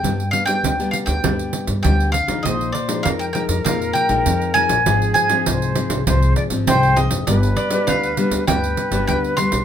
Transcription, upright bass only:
\new Staff \with { instrumentName = "Upright bass" } { \clef bass \time 4/4 \key g \phrygian \tempo 4 = 100 g,8 r8 d,8 r16 d,16 d,8 r16 g,16 d,8. f,16 | bes,,8 r8 f,8 r16 f,16 f,8 r16 bes,,16 f,8. bes,,16 | aes,,8 r8 c,8 r16 c,16 c,8 r16 aes,,16 c,8. fis,,16 | g,,8 r8 d,8 r16 d,16 d,8 r16 g,,16 d,8. b,,16 | }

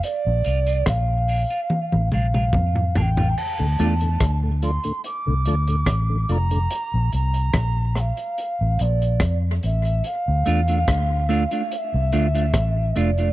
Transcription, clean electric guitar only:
\new Staff \with { instrumentName = "Clean electric guitar" } { \time 4/4 \key d \minor \tempo 4 = 72 r8 <bes d' f'>16 <bes d' f'>16 r8 <bes d' f'>16 <bes d' f'>16 r8 <bes d' f'>16 <bes d' f'>16 r8 <bes d' f'>16 <bes d' f'>16 | r8 <a d' f'>16 r2. r16 | r1 | r8 <a d' f'>16 <a d' f'>16 r8 <a d' f'>16 <a d' f'>16 r8 <a d' f'>16 <a d' f'>16 r8 <a d' f'>16 <a d' f'>16 | }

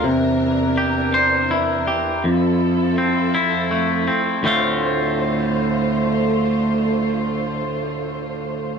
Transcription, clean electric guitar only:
\new Staff \with { instrumentName = "Clean electric guitar" } { \time 6/8 \key d \minor \tempo 4. = 54 c4 g'8 c''8 e'8 g'8 | f,4 c'8 e'8 a8 c'8 | <d, a, d a c' f'>2.~ | <d, a, d a c' f'>2. | }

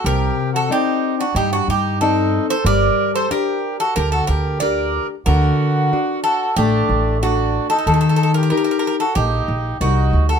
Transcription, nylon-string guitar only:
\new Staff \with { instrumentName = "Nylon-string guitar" } { \time 4/4 \tempo 4 = 92 c4 <c' ees' d''>4 g4 <c' ees' d''>4 | g4 <d' g' bes'>4 d4 <d' g' bes'>4 | d4 <d' fis'>4 a4 <d' fis' a'>4 | ees4 <ees' g' bes'>4 bes4 <g ees' bes'>4 | }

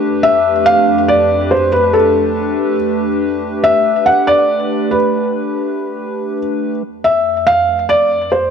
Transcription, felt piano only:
\new Staff \with { instrumentName = "Felt piano" } { \time 4/4 \key f \lydian \tempo 4 = 141 r8 e''4 f''4 d''4 c''8 | b'8 a'2 r4. | r8 e''4 ges''8 d''4. b'8~ | b'2. r4 |
r8 e''4 f''4 d''4 c''8 | }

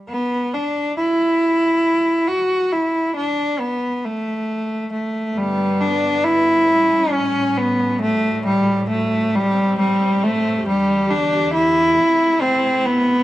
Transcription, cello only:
\new Staff \with { instrumentName = "Cello" } { \time 6/8 \key g \major \tempo 4. = 45 b8 d'8 e'4. fis'8 | e'8 d'8 b8 a4 a8 | g8 d'8 e'4 cis'8 b8 | a8 g8 a8 g8 g8 a8 |
g8 d'8 e'4 c'8 b8 | }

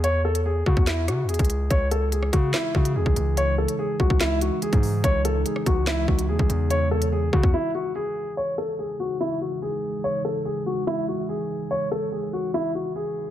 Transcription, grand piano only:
\new Staff \with { instrumentName = "Grand piano" } { \time 4/4 \key cis \minor \tempo 4 = 144 cis''8 a'8 gis'8 fis'8 e'8 fis'8 gis'4 | cis''8 a'8 gis'8 fis'8 e'8 fis'8 gis'4 | cis''8 a'8 gis'8 fis'8 e'8 fis'8 gis'4 | cis''8 a'8 gis'8 fis'8 e'8 fis'8 gis'4 |
cis''8 a'8 gis'8 fis'8 e'8 fis'8 gis'4 | cis''8 a'8 gis'8 fis'8 e'8 fis'8 gis'4 | cis''8 a'8 gis'8 fis'8 e'8 fis'8 gis'4 | cis''8 a'8 gis'8 fis'8 e'8 fis'8 gis'4 | }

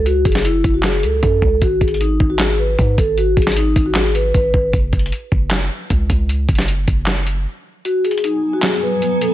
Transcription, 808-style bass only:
\new Staff \with { instrumentName = "808-style bass" } { \clef bass \time 4/4 \key gis \phrygian \tempo 4 = 154 cis,8 fis,,4 fis,,4 cis,8 fis,8 cis,8 | gis,,8 gis,,4 gis,,4. gis,8 gis,,8~ | gis,,8 gis,,4 gis,,4. gis,,8 gis,,8 | fis,,8 fis,,8 r8 fis,,4 r8 cis,8 cis,8~ |
cis,8 fis,,4 fis,,4. r4 | r1 | }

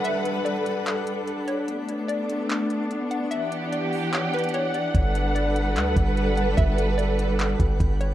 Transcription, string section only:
\new Staff \with { instrumentName = "String section" } { \time 4/4 \key g \lydian \tempo 4 = 147 << { <g a' b' fis''>1 | <a b>1 | <e g' fis''>1 | <g a' b'>1~ |
<g a' b'>1 | } \\ { d'1~ | d'1~ | d'1~ | d'1~ |
d'1 | } >> }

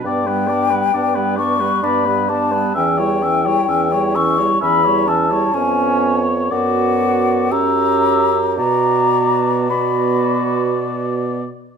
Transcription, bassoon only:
\new Staff \with { instrumentName = "Bassoon" } { \clef bass \time 3/4 \key b \minor \tempo 4 = 64 g,4 g,4 g,4 | e,4 e,4 e,4 | eis,4 fis,4 fis,4 | b,2~ b,8 r8 | }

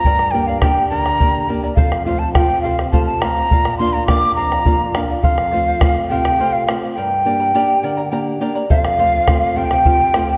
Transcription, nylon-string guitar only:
\new Staff \with { instrumentName = "Nylon-string guitar" } { \time 6/8 \key f \mixolydian \tempo 4. = 69 g,8 <bes d' g'>8 <bes d' g'>8 d8 <bes d' g'>8 <bes d' g'>8 | f,8 <a c' f'>8 <a c' f'>8 c8 <a c' f'>8 <a c' f'>8 | bes,8 <bes d' f'>8 <bes d' f'>8 f,8 <bes d' f'>8 <bes d' f'>8 | f,8 <a c' f'>8 <a c' f'>8 c8 <a c' f'>8 <a c' f'>8 |
g,8 <bes d' g'>8 <bes d' g'>8 d8 <bes d' g' g''>8 <bes d' g' d''>8 | f,8 <a c' f'>8 <a c' f'>8 c8 <a c' f'>8 <a c' f'>8 | }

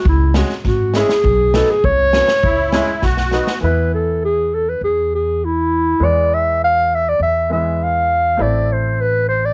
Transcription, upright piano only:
\new Staff \with { instrumentName = "Upright piano" } { \time 2/4 \tempo 4 = 101 r8 <gis cis' fis'>16 r8. <gis cis' e'>16 r16 | r8 <fis b dis'>16 r8. <fis b cis'>16 r16 | r8 <gis cis' e'>16 r8. <fis b dis'>16 r16 | <e b e'>2~ |
<e b e'>2 | <e gis b>2~ | <e gis b>8 <e gis b>4. | <a c' e'>2 | }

